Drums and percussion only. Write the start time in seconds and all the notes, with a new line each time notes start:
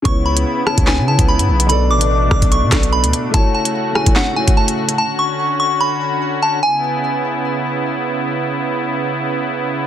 0.05 kick, closed hi-hat
0.37 closed hi-hat
0.67 cross-stick
0.78 kick, closed hi-hat
0.87 snare, clap
1.19 kick, closed hi-hat
1.39 closed hi-hat
1.60 closed hi-hat
1.70 closed hi-hat
2.01 closed hi-hat
2.31 kick, cross-stick
2.42 kick, closed hi-hat
2.52 closed hi-hat
2.72 kick, cross-stick, snare, clap, closed hi-hat
2.83 closed hi-hat
3.04 closed hi-hat
3.13 closed hi-hat
3.34 kick, closed hi-hat
3.65 closed hi-hat
3.95 cross-stick
4.06 kick, closed hi-hat
4.16 snare, clap
4.48 kick, closed hi-hat
4.68 closed hi-hat
4.89 closed hi-hat